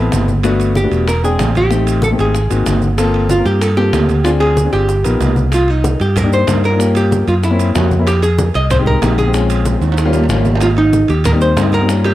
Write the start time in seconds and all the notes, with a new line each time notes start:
Already playing: B3 C4 E4 A4
0.12 G1, high bongo, low bongo, high conga, high timbale, low timbale, maracas
0.28 high bongo, high conga, maracas
0.43 A3 B3 D4 F#4, high bongo, high timbale, maracas
0.60 high conga, high timbale, maracas
0.75 G4, high bongo, high conga, low timbale, maracas
0.83 A3 B3 D4 F#4
0.91 E1, high timbale, maracas
1.08 A#4, high bongo, high conga, high timbale, maracas
1.23 G#3 C4 D4 G#4 G5, high conga, maracas
1.39 A1, high bongo, low bongo, high conga, high timbale, low timbale, maracas
1.55 G4, high conga, high timbale, maracas
1.71 A3 C4 D#4 G4, high bongo, maracas
1.86 high bongo, high conga, high timbale, maracas
2.02 A4, high bongo, high conga, low timbale, maracas
2.11 A3 C4 D#4 G4
2.18 G#1 G#4, high conga, high timbale, maracas
2.34 high bongo, high conga, maracas
2.50 G#1 A#3 C4 D#4 F#4, high bongo, high conga, high timbale, maracas
2.66 G1, high bongo, low bongo, high conga, high timbale, low timbale, maracas
2.82 high bongo, high conga, maracas
2.98 A#3 C4 F4 A4, high bongo, high conga, high timbale, maracas
3.14 high conga, high timbale
3.29 F4, high bongo, high conga, low timbale, maracas
3.37 A#3 C4 F4 A#4
3.45 G2 G4, high conga, high timbale, maracas
3.61 A4, high bongo, high conga, high timbale, maracas
3.77 A#3 C4 F4 G4 A4, high conga
3.93 D2, high bongo, low bongo, high conga, high timbale, low timbale, maracas
4.09 high conga, high timbale, maracas
4.24 C4 D4 F4 G#4, high bongo, maracas
4.40 G#4, high timbale
4.56 high bongo, high conga, low timbale, maracas
4.64 C4 D4 F4 G#4
4.73 G1 G4, high conga, high timbale, maracas
4.89 high bongo, high conga, maracas
5.04 A#1 B3 D#4 F4 A#4, high bongo, high conga, high timbale, maracas
5.20 C2, low bongo, high conga, high timbale, low timbale, maracas
5.36 low bongo, high conga, maracas
5.52 F4, high bongo, high conga, high timbale, maracas
5.68 D#4, high conga, high timbale
5.84 high bongo, high conga, low timbale, maracas
6.00 G2 G4, high conga, high timbale, maracas
6.16 A#4, high bongo, high conga, low conga, high timbale, maracas
6.23 A#3 D4 D#4 G4
6.33 C5, high conga, maracas
6.47 G2 A#3 D4 D#4 A#4, high bongo, low bongo, high conga, high timbale, low timbale, maracas
6.64 A#4, high timbale, maracas
6.71 A#3 D4 D#4 F4
6.79 A#3 C#4 F4 G4, high bongo, high conga, maracas
6.95 G4, high bongo, high conga, high timbale, maracas
7.11 high bongo, high conga, low timbale, maracas
7.27 F#2 F4, high conga, high timbale, maracas
7.43 E4, high bongo, high conga, maracas
7.50 A#3 C4 C#4 E4
7.59 high bongo, high conga, high timbale, maracas
7.75 F2 A#3 C4 C#4 F#4, high bongo, low bongo, high conga, high timbale, low timbale, maracas
7.91 high bongo, high conga, maracas
7.99 A#3 C4 C#4 E4
8.07 G4, high bongo, high conga, high timbale, maracas
8.22 G#4, high conga, high timbale, maracas
8.38 high bongo, high conga, low timbale, maracas
8.54 C2 D#5, high conga, high timbale, maracas
8.70 C5, high bongo, high conga, low conga, high timbale, maracas
8.78 G#3 C4 D#4 G4
8.86 A#4, high conga, low conga
9.02 A#1 G#3 C4 D#4 G4, high bongo, low bongo, high conga, high timbale, low timbale, maracas
9.18 G#4, high conga, high timbale, maracas
9.26 G#3 C4 D#4 G4
9.34 G#3 C4 C#4 F4, high bongo, maracas
9.50 high bongo, high conga, high timbale, maracas
9.65 high bongo, high conga, low timbale, maracas
9.81 D#2, high conga, high timbale, maracas
9.92 high timbale
9.97 high bongo, high conga, maracas
10.05 G3 A#3 C#4 F4
10.13 high bongo, low timbale, maracas
10.24 low timbale
10.29 G#1 G3 A#3 C#4 F4, high bongo, low bongo, high conga, maracas
10.35 low timbale
10.45 high bongo, high conga, low timbale, maracas
10.52 G3 A#3 C#4 F4, low timbale
10.60 F4, high bongo, high timbale, maracas
10.77 D#4, high conga, high timbale
10.93 high bongo, high conga, low timbale, maracas
11.08 D#2 G4, high conga, high timbale, maracas
11.24 A#4, high bongo, high conga, low conga, high timbale, maracas
11.32 G3 A#3 C4 D#4
11.41 C5, maracas
11.57 G2 G3 A#3 C4 D#4, high bongo, low bongo, high conga, high timbale, low timbale, maracas
11.72 A#4, high conga, high timbale, maracas
11.81 G3 A#3 C4 D#4
11.88 G3 A#3 C#4 F4, high bongo, high conga, maracas
12.04 G4, high bongo, high conga, high timbale